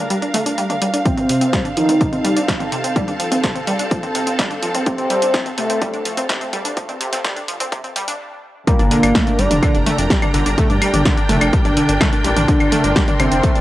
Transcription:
Already playing: D4 A#4 F5 A#5
0.10 G3, closed hi-hat
0.22 G1 D4, closed hi-hat
0.34 A3, open hi-hat, mid tom
0.46 G1 D4, closed hi-hat
0.58 G3, closed hi-hat
0.70 D4, closed hi-hat, mid tom
0.82 A1 G3, open hi-hat
0.94 A1 D4, closed hi-hat
1.05 F3 C4, kick, closed hi-hat
1.17 G1 C4, closed hi-hat, mid tom
1.29 C3, open hi-hat
1.41 G1 C4 A4 A5, closed hi-hat
1.53 G3, kick, snare, closed hi-hat, mid tom
1.65 D4, closed hi-hat
1.77 G1 F3 D#4, open hi-hat
1.89 F1 C4, closed hi-hat, mid tom
2.01 C3, kick, closed hi-hat
2.13 F1 C4, closed hi-hat
2.24 G3, open hi-hat, mid tom
2.36 F1 D4, closed hi-hat
2.48 F3, kick, snare, closed hi-hat
2.60 C4, closed hi-hat, mid tom
2.72 G1 C3, open hi-hat
2.84 G1 C4, closed hi-hat
2.96 G3, kick, closed hi-hat, mid tom
3.08 G2 D4, closed hi-hat
3.20 F3, open hi-hat
3.32 G1 C4, closed hi-hat, mid tom
3.43 C3, kick, snare, closed hi-hat
3.56 C4, closed hi-hat
3.67 F1 G3, open hi-hat, mid tom
3.79 F1 D4, closed hi-hat
3.91 F3, kick, closed hi-hat
4.03 G1 C4, closed hi-hat, mid tom
4.15 C3, open hi-hat
4.27 G1 C4, closed hi-hat
4.39 G3, kick, snare, closed hi-hat, mid tom
4.51 D4, closed hi-hat
4.63 A1 F3, open hi-hat
4.75 A1 C4, closed hi-hat, mid tom
4.86 C3 C4, kick, closed hi-hat
4.98 G1 C4, closed hi-hat
5.10 G3, open hi-hat, mid tom
5.22 G1 D4, closed hi-hat
5.34 F3, kick, snare, closed hi-hat
5.46 C4, closed hi-hat, mid tom
5.58 G1 C3 A3, open hi-hat
5.70 F1 C4, closed hi-hat
5.82 G3, kick, closed hi-hat, mid tom
5.94 F1 D4, closed hi-hat
6.05 F3, open hi-hat
6.17 F1 C4, closed hi-hat, mid tom
6.29 C3, kick, snare, closed hi-hat
6.41 C4, closed hi-hat
6.53 G1 G3, open hi-hat, mid tom
6.65 G1 D4, closed hi-hat
6.77 F3, kick, closed hi-hat
6.89 G2 C4, closed hi-hat, mid tom
7.01 C3, open hi-hat
7.13 G1 C4, snare, closed hi-hat
7.24 G3, kick, snare, closed hi-hat, mid tom
7.36 D4, closed hi-hat
7.48 F1 F3, open hi-hat
7.60 F1 C4, closed hi-hat, mid tom
7.72 C3, kick, closed hi-hat
7.84 G1 C4, closed hi-hat
7.96 G3, open hi-hat, mid tom
8.08 G1 D4, closed hi-hat
8.67 G3 A#3 D4 G4, kick, closed hi-hat
8.73 A#4
8.79 G1 D4 D5, closed hi-hat, mid tom
8.91 D3 D4 A#5, open hi-hat
8.95 G5
9.03 G1 D4 D5, closed hi-hat, claves
9.15 A3 A4, kick, snare, closed hi-hat, mid tom
9.27 D4 D5, closed hi-hat
9.39 G1 G3 D4 G4, open hi-hat
9.51 F1 D4 D5, closed hi-hat, mid tom
9.63 D3 D4, kick, closed hi-hat, claves
9.75 F1 D4 D5, closed hi-hat
9.86 A3 A4, open hi-hat, mid tom
9.98 F1 D4 D5, closed hi-hat
10.10 G3 G4, kick, snare, closed hi-hat
10.22 D4 D5, closed hi-hat, mid tom, claves
10.34 G1 D3 D4, open hi-hat
10.46 G1 D4 D5, closed hi-hat
10.58 A3 A4, kick, closed hi-hat, mid tom
10.70 G2 D4 D5, closed hi-hat
10.82 G3 G4, open hi-hat, claves
10.94 G1 D4 D5, closed hi-hat, mid tom
11.05 D3 D4, kick, snare, closed hi-hat
11.17 D4 D5, closed hi-hat
11.29 F1 A3 A4, open hi-hat, mid tom
11.41 F1 D4 D5, closed hi-hat, claves
11.53 G3 G4, kick, closed hi-hat
11.65 G1 D4 D5, closed hi-hat, mid tom
11.77 D3 D4, open hi-hat
11.89 G1 D4 D5, closed hi-hat
12.01 A3 A4, kick, snare, closed hi-hat, mid tom, claves
12.13 D4 D5 C6, closed hi-hat
12.24 A1 G3 G4, open hi-hat
12.36 A1 D4 D5, closed hi-hat, mid tom
12.48 D3 D4, kick, closed hi-hat
12.60 G1 D4 D5, closed hi-hat, claves
12.72 A3 A4, open hi-hat, mid tom
12.84 G1 D4 D5, closed hi-hat
12.96 G3 G4, kick, snare, closed hi-hat
13.08 D4 D5, closed hi-hat, mid tom
13.20 G1 D3 C4 D4, open hi-hat, claves
13.32 F1 D4 D5, closed hi-hat
13.43 A3 A4, kick, closed hi-hat, mid tom
13.55 F1 D4 D5, closed hi-hat

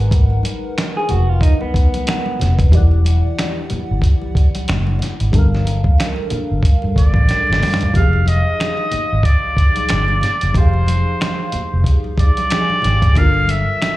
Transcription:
Already playing: G#1 G#3 D#4 A#4 B4 F#5
0.11 kick, closed hi-hat, muted conga
0.30 muted conga
0.43 closed hi-hat, high conga
0.78 finger snap, snare, closed hi-hat
0.97 G#4
1.09 F1 F#4, closed hi-hat, high conga, low conga
1.29 F4
1.41 D#4, kick, closed hi-hat, muted conga
1.61 B3, muted conga
1.74 kick, closed hi-hat
1.94 closed hi-hat, high conga
2.06 G#3 D#4 A#4 B4 F#5, finger snap, snare, closed hi-hat, muted conga
2.26 high conga
2.39 F1, snare, closed hi-hat, low conga
2.59 kick, closed hi-hat
2.70 E1 E3 E4 G4, kick, closed hi-hat, muted conga
2.75 D5 F#5
2.91 muted conga
3.05 closed hi-hat, high conga
3.38 finger snap, snare, closed hi-hat, muted conga
3.70 muted fingered electric bass stroke, closed hi-hat, high conga, low conga
3.91 G1
4.02 kick, closed hi-hat, muted conga
4.22 muted conga
4.35 kick, closed hi-hat
4.55 closed hi-hat, high conga
4.68 F#1, finger snap, snare, closed hi-hat, muted conga
4.87 high conga
4.99 closed hi-hat, low conga
5.03 snare
5.20 G#1, closed hi-hat
5.32 G1 G3 D4 A4, kick, closed hi-hat, muted conga
5.37 A#4 F5
5.55 snare
5.65 closed hi-hat, high conga
5.84 kick
5.98 finger snap, snare, closed hi-hat, muted conga
6.16 muted conga
6.30 muted fingered electric bass stroke, closed hi-hat, high conga, low conga
6.51 G1
6.63 kick, closed hi-hat, muted conga
6.82 G2, muted conga
6.96 G1 D5, kick, closed hi-hat
7.14 A1, kick, high conga
7.29 muted fingered electric bass stroke, snare, closed hi-hat
7.47 G1, muted conga, high conga
7.53 snare
7.60 snare, open hi-hat, low conga
7.64 G2
7.74 snare
7.81 closed hi-hat, floor tom
7.93 F1 F3 D#4 G4 F5, kick, closed hi-hat, low conga
7.98 G#4 F5
8.13 muted conga
8.26 D#5, closed hi-hat, high conga
8.60 finger snap, snare, closed hi-hat, muted conga
8.77 muted conga
8.91 muted fingered electric bass stroke, closed hi-hat, low conga
9.13 G#1
9.23 D5, kick, closed hi-hat, muted conga
9.57 kick, closed hi-hat
9.76 closed hi-hat, high conga
9.89 G1, finger snap, snare, closed hi-hat, muted conga
10.08 muted conga, high conga
10.21 snare, closed hi-hat, low conga
10.41 F#1, closed hi-hat
10.53 F1 F3 D#4 G4 C5, kick, closed hi-hat, low conga
10.58 G#4 F5
10.73 muted conga
10.86 closed hi-hat, high conga
11.21 finger snap, snare, closed hi-hat, muted conga
11.52 muted fingered electric bass stroke, closed hi-hat, low conga
11.73 F1
11.84 kick, closed hi-hat, muted conga
12.04 muted conga
12.18 D5, kick, closed hi-hat
12.37 closed hi-hat, high conga
12.50 F3 D#4 G#4 G5, finger snap, snare, closed hi-hat, muted conga
12.60 G#5
12.70 muted conga, high conga
12.82 G#1, snare, closed hi-hat, low conga
13.02 kick, closed hi-hat
13.14 G1 G3 D4 A4 F5, kick, closed hi-hat, low conga
13.19 F4 A#4
13.34 muted conga
13.48 E5, closed hi-hat, high conga
13.81 finger snap, snare, closed hi-hat, muted conga

